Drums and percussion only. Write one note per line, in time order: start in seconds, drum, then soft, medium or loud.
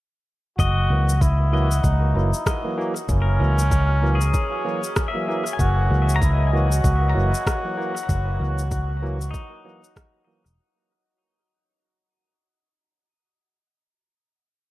0.59 kick loud
0.59 cabasa soft
1.09 cabasa soft
1.21 kick loud
1.21 cabasa soft
1.71 cabasa soft
1.84 kick loud
1.84 cabasa soft
2.34 cabasa soft
2.46 kick medium
2.46 cross-stick medium
2.46 cabasa soft
2.96 cabasa soft
3.09 kick loud
3.09 cabasa soft
3.59 cabasa soft
3.71 kick loud
3.71 cabasa soft
4.21 cabasa soft
4.34 kick loud
4.34 cabasa soft
4.84 cabasa medium
4.96 kick loud
4.96 cross-stick medium
4.96 cabasa soft
5.46 cabasa soft
5.59 kick loud
5.59 cabasa soft
6.09 cabasa medium
6.22 kick loud
6.22 cabasa soft
6.72 cabasa medium
6.84 kick loud
6.84 cabasa soft
7.34 cabasa medium
7.47 kick loud
7.47 cross-stick medium
7.47 cabasa soft
7.97 cabasa soft
8.09 kick loud
8.09 cabasa soft
8.59 cabasa soft
8.71 kick loud
8.71 cabasa soft
9.21 cabasa soft
9.34 kick loud
9.34 cabasa soft
9.84 cabasa soft
9.96 kick loud
9.96 cross-stick medium
9.96 cabasa soft
10.46 cabasa soft